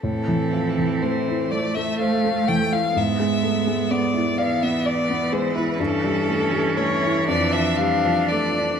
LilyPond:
<<
  \new Staff \with { instrumentName = "Violin" } { \time 6/8 \key a \minor \tempo 4. = 42 a'4 c''8 d''16 e''16 f''8 g''16 f''16 | e''4 d''8 f''16 e''16 d''8 c''16 b'16 | a'4 cis''8 d''16 e''16 f''8 d''8 | }
  \new Staff \with { instrumentName = "Viola" } { \time 6/8 \key a \minor c'4. a4. | b4. b4. | cis'4. d'4. | }
  \new Staff \with { instrumentName = "Grand piano" } { \time 6/8 \key a \minor a,16 e16 f16 e16 a16 e'16 c''16 a16 c''16 a16 e16 e'16 | gis,16 gis16 a16 gis16 b16 e'16 d''16 b16 d''16 b16 gis16 e'16 | g,16 g16 a16 g16 a16 e'16 f,16 f16 g16 f16 a16 d'16 | }
  \new Staff \with { instrumentName = "Cello" } { \clef bass \time 6/8 \key a \minor e4. a4. | gis4. e4.~ | e2. | }
>>